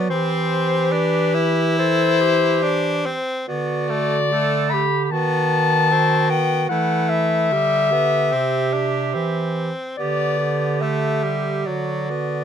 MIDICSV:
0, 0, Header, 1, 5, 480
1, 0, Start_track
1, 0, Tempo, 839161
1, 63, Time_signature, 4, 2, 24, 8
1, 2464, Tempo, 802139
1, 3904, Tempo, 820793
1, 6304, Tempo, 864553
1, 7205, End_track
2, 0, Start_track
2, 0, Title_t, "Clarinet"
2, 0, Program_c, 0, 71
2, 56, Note_on_c, 0, 72, 110
2, 534, Note_on_c, 0, 71, 121
2, 542, Note_off_c, 0, 72, 0
2, 1018, Note_off_c, 0, 71, 0
2, 1024, Note_on_c, 0, 72, 127
2, 1819, Note_off_c, 0, 72, 0
2, 1992, Note_on_c, 0, 74, 125
2, 2700, Note_on_c, 0, 83, 112
2, 2709, Note_off_c, 0, 74, 0
2, 2904, Note_off_c, 0, 83, 0
2, 2907, Note_on_c, 0, 83, 82
2, 2946, Note_on_c, 0, 81, 120
2, 2955, Note_off_c, 0, 83, 0
2, 3658, Note_on_c, 0, 79, 126
2, 3667, Note_off_c, 0, 81, 0
2, 3886, Note_off_c, 0, 79, 0
2, 3890, Note_on_c, 0, 78, 113
2, 4125, Note_on_c, 0, 76, 127
2, 4134, Note_off_c, 0, 78, 0
2, 5660, Note_off_c, 0, 76, 0
2, 5809, Note_on_c, 0, 74, 113
2, 6300, Note_on_c, 0, 76, 98
2, 6309, Note_off_c, 0, 74, 0
2, 6771, Note_on_c, 0, 74, 93
2, 6779, Note_off_c, 0, 76, 0
2, 7205, Note_off_c, 0, 74, 0
2, 7205, End_track
3, 0, Start_track
3, 0, Title_t, "Clarinet"
3, 0, Program_c, 1, 71
3, 0, Note_on_c, 1, 66, 87
3, 63, Note_off_c, 1, 66, 0
3, 76, Note_on_c, 1, 67, 89
3, 1025, Note_on_c, 1, 69, 93
3, 1033, Note_off_c, 1, 67, 0
3, 1263, Note_on_c, 1, 67, 91
3, 1271, Note_off_c, 1, 69, 0
3, 1832, Note_off_c, 1, 67, 0
3, 1991, Note_on_c, 1, 66, 74
3, 2474, Note_on_c, 1, 69, 87
3, 2483, Note_off_c, 1, 66, 0
3, 2718, Note_on_c, 1, 67, 91
3, 2727, Note_off_c, 1, 69, 0
3, 2949, Note_off_c, 1, 67, 0
3, 2953, Note_on_c, 1, 66, 76
3, 3420, Note_off_c, 1, 66, 0
3, 3426, Note_on_c, 1, 66, 83
3, 3896, Note_on_c, 1, 64, 75
3, 3905, Note_off_c, 1, 66, 0
3, 4378, Note_on_c, 1, 67, 81
3, 4387, Note_off_c, 1, 64, 0
3, 4857, Note_off_c, 1, 67, 0
3, 4861, Note_on_c, 1, 67, 93
3, 5650, Note_off_c, 1, 67, 0
3, 5816, Note_on_c, 1, 67, 80
3, 6042, Note_off_c, 1, 67, 0
3, 6056, Note_on_c, 1, 67, 74
3, 6781, Note_on_c, 1, 66, 73
3, 6789, Note_off_c, 1, 67, 0
3, 7205, Note_off_c, 1, 66, 0
3, 7205, End_track
4, 0, Start_track
4, 0, Title_t, "Tenor saxophone"
4, 0, Program_c, 2, 66
4, 56, Note_on_c, 2, 60, 93
4, 529, Note_on_c, 2, 62, 100
4, 537, Note_off_c, 2, 60, 0
4, 768, Note_on_c, 2, 64, 100
4, 776, Note_off_c, 2, 62, 0
4, 1501, Note_on_c, 2, 62, 103
4, 1509, Note_off_c, 2, 64, 0
4, 1749, Note_on_c, 2, 60, 94
4, 1757, Note_off_c, 2, 62, 0
4, 1985, Note_off_c, 2, 60, 0
4, 1989, Note_on_c, 2, 59, 81
4, 2226, Note_on_c, 2, 57, 83
4, 2234, Note_off_c, 2, 59, 0
4, 2394, Note_off_c, 2, 57, 0
4, 2466, Note_on_c, 2, 57, 81
4, 2786, Note_off_c, 2, 57, 0
4, 2942, Note_on_c, 2, 59, 90
4, 3430, Note_on_c, 2, 60, 94
4, 3439, Note_off_c, 2, 59, 0
4, 3655, Note_on_c, 2, 59, 90
4, 3664, Note_off_c, 2, 60, 0
4, 3892, Note_off_c, 2, 59, 0
4, 3896, Note_on_c, 2, 57, 80
4, 4378, Note_on_c, 2, 55, 86
4, 4387, Note_off_c, 2, 57, 0
4, 4607, Note_on_c, 2, 59, 96
4, 4616, Note_off_c, 2, 55, 0
4, 4845, Note_on_c, 2, 60, 89
4, 4854, Note_off_c, 2, 59, 0
4, 5085, Note_on_c, 2, 62, 82
4, 5094, Note_off_c, 2, 60, 0
4, 5323, Note_on_c, 2, 60, 76
4, 5332, Note_off_c, 2, 62, 0
4, 5813, Note_off_c, 2, 60, 0
4, 5817, Note_on_c, 2, 59, 82
4, 6301, Note_on_c, 2, 57, 83
4, 6310, Note_off_c, 2, 59, 0
4, 6536, Note_on_c, 2, 55, 77
4, 6545, Note_off_c, 2, 57, 0
4, 6771, Note_on_c, 2, 54, 76
4, 6780, Note_off_c, 2, 55, 0
4, 7015, Note_on_c, 2, 59, 71
4, 7023, Note_off_c, 2, 54, 0
4, 7205, Note_off_c, 2, 59, 0
4, 7205, End_track
5, 0, Start_track
5, 0, Title_t, "Bass clarinet"
5, 0, Program_c, 3, 71
5, 0, Note_on_c, 3, 54, 89
5, 56, Note_on_c, 3, 52, 84
5, 65, Note_off_c, 3, 54, 0
5, 1829, Note_off_c, 3, 52, 0
5, 1985, Note_on_c, 3, 50, 82
5, 2945, Note_on_c, 3, 51, 94
5, 2954, Note_off_c, 3, 50, 0
5, 3889, Note_off_c, 3, 51, 0
5, 3893, Note_on_c, 3, 52, 81
5, 4370, Note_on_c, 3, 50, 78
5, 4379, Note_off_c, 3, 52, 0
5, 4852, Note_on_c, 3, 48, 83
5, 4861, Note_off_c, 3, 50, 0
5, 5332, Note_on_c, 3, 52, 76
5, 5341, Note_off_c, 3, 48, 0
5, 5664, Note_off_c, 3, 52, 0
5, 5819, Note_on_c, 3, 50, 90
5, 6752, Note_off_c, 3, 50, 0
5, 6773, Note_on_c, 3, 50, 70
5, 7205, Note_off_c, 3, 50, 0
5, 7205, End_track
0, 0, End_of_file